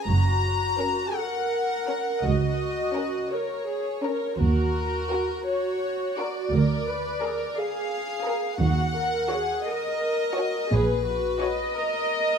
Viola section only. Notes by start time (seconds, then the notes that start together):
0.10 F#4
1.17 A#4
2.25 F#4
3.32 A#4
3.69 G#4
4.05 A#4
4.41 F#4
5.47 F#4
6.53 A#4
6.88 B4
7.23 A#4
7.58 G#4
8.61 F#4
8.97 A#4
9.31 G#4
9.67 A#4
10.72 G#4
11.06 F#4
11.41 D#5